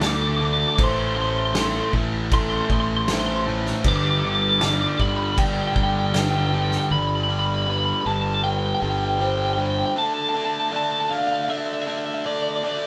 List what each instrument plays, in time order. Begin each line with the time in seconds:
Already playing: fingered electric bass D2
0.01 overdriven electric guitar D3 A3 D4, vibraphone A4, snare, crash
0.07 clean electric guitar D6
0.15 clean electric guitar D6
0.21 clean electric guitar D6
0.29 clean electric guitar D6
0.37 clean electric guitar D6
0.41 overdriven electric guitar D3 A3 D4
0.45 clean electric guitar D6
0.53 clean electric guitar D6
0.60 clean electric guitar D6
0.68 clean electric guitar D6
0.76 fingered electric bass A1, overdriven electric guitar A2, vibraphone C5, clean electric guitar D6, kick, crash
0.80 overdriven electric guitar E3 A3, clean electric guitar C6
0.91 clean electric guitar C6
0.99 clean electric guitar C6
1.07 clean electric guitar C6
1.15 overdriven electric guitar A2 E3 A3, clean electric guitar C6
1.22 clean electric guitar C6
1.30 clean electric guitar C6
1.38 clean electric guitar C6
1.45 clean electric guitar C6
1.53 overdriven electric guitar A2 E3 A3, vibraphone A4, clean electric guitar C6, snare, crash
1.60 clean electric guitar C6
1.77 clean electric guitar C6
1.84 clean electric guitar C6
1.93 fingered electric bass A1, overdriven electric guitar A2 E3 A3, kick
2.32 overdriven electric guitar A2 E3 A3, vibraphone A4, clean electric guitar C6, kick, crash
2.41 clean electric guitar C6
2.50 clean electric guitar C6
2.57 clean electric guitar C6
2.65 clean electric guitar C6
2.70 fingered electric bass A1, overdriven electric guitar A2 E3 A3, clean electric guitar C6, kick
2.80 clean electric guitar C6
2.88 clean electric guitar C6
2.97 clean electric guitar C6
3.05 clean electric guitar C6, snare, crash
3.09 overdriven electric guitar A2 E3 A3, vibraphone C5, clean electric guitar C6
3.20 clean electric guitar C6
3.26 clean electric guitar C6
3.36 clean electric guitar C6
3.47 overdriven electric guitar A2 E3 A3
3.66 snare
3.84 fingered electric bass G1, overdriven electric guitar G2 D3 G3, vibraphone B4, clean electric guitar D6, kick, crash
3.96 clean electric guitar D6
4.04 clean electric guitar D6
4.11 clean electric guitar D6
4.19 clean electric guitar D6
4.24 overdriven electric guitar G2 D3 G3, clean electric guitar D6
4.35 clean electric guitar D6
4.42 clean electric guitar D6
4.49 clean electric guitar D6
4.59 overdriven electric guitar G2 D3, vibraphone D5, clean electric guitar D6, snare, crash
4.63 overdriven electric guitar G3, clean electric guitar D6
4.73 clean electric guitar D6
4.81 clean electric guitar D6
4.88 clean electric guitar D6
4.97 fingered electric bass G1, overdriven electric guitar G2 D3 G3, clean electric guitar B5 D6, kick
5.09 clean electric guitar B5
5.16 clean electric guitar B5
5.25 clean electric guitar B5
5.32 clean electric guitar B5
5.38 overdriven electric guitar G2 D3 G3, vibraphone D5, clean electric guitar G5, kick, crash
5.45 clean electric guitar G5
5.53 clean electric guitar G5
5.62 clean electric guitar G5
5.67 clean electric guitar G5
5.76 fingered electric bass G1, overdriven electric guitar G2 D3 G3, clean electric guitar G5, kick
5.83 clean electric guitar G5
5.90 clean electric guitar G5
5.99 clean electric guitar G5
6.05 clean electric guitar G5
6.14 overdriven electric guitar G2 D3 G3, vibraphone B4, clean electric guitar G5, snare, crash
6.21 clean electric guitar G5
6.31 clean electric guitar G5
6.38 clean electric guitar G5
6.46 clean electric guitar G5
6.52 overdriven electric guitar G2 D3 G3, clean electric guitar G5
6.62 clean electric guitar G5
6.71 clean electric guitar G5, snare
6.78 clean electric guitar G5
6.91 fingered electric bass G1, overdriven electric guitar G2 D3 G3, vibraphone D5, clean electric guitar B5
6.99 clean electric guitar B5
7.07 clean electric guitar B5
7.15 clean electric guitar B5
7.23 clean electric guitar B5
7.28 overdriven electric guitar G2 D3 G3, clean electric guitar B5
7.39 clean electric guitar B5
7.46 clean electric guitar B5
7.54 clean electric guitar B5
7.62 clean electric guitar B5
7.67 overdriven electric guitar G2 D3 G3, vibraphone B4, clean electric guitar B5
7.78 clean electric guitar B5
7.86 clean electric guitar B5
7.93 clean electric guitar B5
8.01 clean electric guitar B5
8.05 fingered electric bass G1, overdriven electric guitar G2 D3 G3, clean electric guitar A5
8.13 clean electric guitar A5
8.21 clean electric guitar A5
8.27 clean electric guitar A5
8.34 clean electric guitar A5
8.43 overdriven electric guitar G2 D3 G3, vibraphone B4, clean electric guitar G5
8.52 clean electric guitar G5
8.59 clean electric guitar G5
8.66 clean electric guitar G5
8.75 clean electric guitar G5
8.81 fingered electric bass G1, overdriven electric guitar G2 D3 G3, clean electric guitar G5
8.90 clean electric guitar G5
8.97 clean electric guitar G5
9.05 clean electric guitar G5
9.13 clean electric guitar G5
9.19 overdriven electric guitar G2 D3 G3, vibraphone C5, clean electric guitar G5
9.30 clean electric guitar G5
9.37 clean electric guitar G5
9.45 clean electric guitar G5
9.53 clean electric guitar G5
9.57 overdriven electric guitar G2 D3 G3, clean electric guitar G5
9.70 clean electric guitar G5
9.78 clean electric guitar G5
9.86 clean electric guitar G5
9.96 overdriven electric guitar D3 A3 D4, vibraphone A4, clean electric guitar A5
10.07 clean electric guitar A5
10.14 clean electric guitar A5
10.22 clean electric guitar A5
10.29 clean electric guitar A5
10.35 overdriven electric guitar D3 A3 D4, clean electric guitar A5
10.45 clean electric guitar A5
10.54 clean electric guitar A5
10.60 clean electric guitar A5
10.69 overdriven electric guitar D3 A3 D4, vibraphone D5, clean electric guitar A5
10.76 clean electric guitar A5
10.84 clean electric guitar A5
10.91 clean electric guitar A5
11.00 clean electric guitar A5
11.08 overdriven electric guitar D3 A3 D4, clean electric guitar F5 A5
11.18 clean electric guitar F5
11.27 clean electric guitar F5
11.34 clean electric guitar F5
11.43 clean electric guitar F5
11.49 overdriven electric guitar D3 A3 D4, vibraphone D5, clean electric guitar E5
11.58 clean electric guitar E5
11.66 clean electric guitar E5
11.73 clean electric guitar E5
11.82 clean electric guitar E5
11.87 overdriven electric guitar D3 A3 D4, clean electric guitar E5
11.97 clean electric guitar E5
12.06 clean electric guitar E5
12.14 clean electric guitar E5
12.25 overdriven electric guitar D3 A3 D4, vibraphone A4, clean electric guitar D5
12.35 clean electric guitar D5
12.42 clean electric guitar D5
12.49 clean electric guitar D5
12.56 clean electric guitar D5
12.64 overdriven electric guitar D3 A3 D4, clean electric guitar D5
12.72 clean electric guitar D5
12.82 clean electric guitar D5